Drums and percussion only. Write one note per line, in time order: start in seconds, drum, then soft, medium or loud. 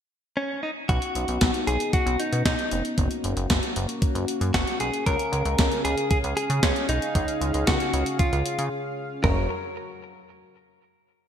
0.89 kick loud
0.89 closed hi-hat medium
1.02 closed hi-hat medium
1.15 closed hi-hat medium
1.28 closed hi-hat soft
1.41 kick loud
1.41 snare loud
1.41 closed hi-hat medium
1.54 closed hi-hat medium
1.67 closed hi-hat medium
1.80 closed hi-hat medium
1.93 kick loud
1.93 closed hi-hat medium
2.07 closed hi-hat soft
2.20 closed hi-hat medium
2.33 closed hi-hat medium
2.46 kick loud
2.46 snare loud
2.46 closed hi-hat medium
2.59 closed hi-hat soft
2.71 closed hi-hat medium
2.85 closed hi-hat medium
2.98 kick loud
2.98 closed hi-hat medium
3.11 closed hi-hat medium
3.24 closed hi-hat medium
3.37 closed hi-hat medium
3.50 kick loud
3.50 snare loud
3.50 closed hi-hat medium
3.63 closed hi-hat medium
3.76 closed hi-hat medium
3.89 closed hi-hat medium
4.02 kick loud
4.02 closed hi-hat medium
4.15 closed hi-hat medium
4.28 closed hi-hat medium
4.41 closed hi-hat medium
4.54 kick loud
4.54 snare loud
4.54 closed hi-hat medium
4.67 closed hi-hat soft
4.80 closed hi-hat medium
4.94 closed hi-hat medium
5.06 kick loud
5.06 closed hi-hat medium
5.19 closed hi-hat medium
5.33 closed hi-hat medium
5.45 closed hi-hat soft
5.58 kick loud
5.58 snare loud
5.58 closed hi-hat medium
5.72 closed hi-hat medium
5.85 closed hi-hat medium
5.98 closed hi-hat medium
6.11 kick loud
6.11 closed hi-hat medium
6.24 closed hi-hat soft
6.37 closed hi-hat medium
6.50 closed hi-hat medium
6.63 kick loud
6.63 snare loud
6.63 closed hi-hat medium
6.76 closed hi-hat soft
6.89 closed hi-hat medium
7.02 closed hi-hat medium
7.15 kick loud
7.15 closed hi-hat medium
7.28 closed hi-hat medium
7.41 closed hi-hat medium
7.54 closed hi-hat medium
7.67 kick loud
7.67 snare loud
7.67 closed hi-hat medium
7.80 closed hi-hat medium
7.93 closed hi-hat medium
8.06 closed hi-hat medium
8.19 kick loud
8.19 closed hi-hat medium
8.33 closed hi-hat soft
8.46 closed hi-hat medium
8.59 closed hi-hat medium
9.24 kick medium
9.24 floor tom medium